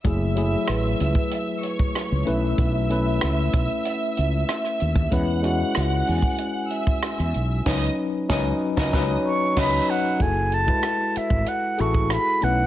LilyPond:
<<
  \new Staff \with { instrumentName = "String section" } { \time 4/4 \key fis \dorian \tempo 4 = 95 <e'' e'''>2~ <e'' e'''>8 <cis'' cis'''>4 <e'' e'''>8~ | <e'' e'''>1 | <fis'' fis'''>2~ <fis'' fis'''>8 <e'' e'''>4. | <dis'' dis'''>8 r8 <dis'' dis'''>8 r16 <dis'' dis'''>16 <dis'' dis'''>8 r8 <dis'' dis'''>8 r8 |
r1 | }
  \new Staff \with { instrumentName = "Flute" } { \time 4/4 \key fis \dorian r1 | r1 | r1 | r2 r8 cis'''8 b''8 fis''8 |
gis''8 a''4 e''8 fis''8 cis'''8 b''8 fis''8 | }
  \new Staff \with { instrumentName = "Vibraphone" } { \time 4/4 \key fis \dorian r4 b'2. | r2. e''4~ | e''8 r4 gis''2~ gis''8~ | gis''8 r2. r8 |
r1 | }
  \new Staff \with { instrumentName = "Tine electric piano" } { \time 4/4 \key fis \dorian <fis a e' gis'>16 r16 <fis a e' gis'>4. r4. <a cis' e' b'>8~ | <a cis' e' b'>16 r16 <a cis' e' b'>4. r2 | <gis cis' e' b'>16 r16 <gis cis' e' fis'>4. r2 | <fis cis' dis' b'>8 r8 <fis cis' dis' b'>8 r16 <fis cis' dis' b'>16 <fis cis' dis' b'>8 r8 <fis cis' dis' b'>8 r8 |
<e' fis' gis' a'>8 r16 <gis e' fis' b'>4~ <gis e' fis' b'>16 r8 <e' fis' gis' a'>4 <a cis' e' b'>8 | }
  \new Staff \with { instrumentName = "Fretless electric bass" } { \clef bass \time 4/4 \key fis \dorian fis,,4 a,,8 cis,16 r4. cis,16 b,,8 | b,,4 cis,8 b,,16 r8. cis,8 r8 dis,8 | e,4 cis,8 e,16 r4. e,16 b,,8 | cis,8 r8 cis,8 r16 cis,16 cis,8 r8 cis,8 r8 |
fis,,4 r8. gis,,16 r8 a,,8. r16 b,,8 | }
  \new DrumStaff \with { instrumentName = "Drums" } \drummode { \time 4/4 <hh bd>8 hh8 <hh ss>8 hh16 bd16 hh8 hh16 bd16 <hh ss>8 hh8 | <hh bd>8 hh8 <hh ss>8 <hh bd>8 hh8 hh8 <hh ss>16 ss16 hh16 bd16 | <hh bd>8 hh8 <hh ss>8 hho16 bd16 hh8 hh16 bd16 <hh ss>16 ss16 hh8 | <cymc bd sn>4 <bd sn>8. <bd sn>16 <bd sn>4 <cymc bd sn>4 |
<hh bd>8 hh16 bd16 <hh ss>8 hh16 bd16 hh8 hh16 bd16 <hh ss>8 hh8 | }
>>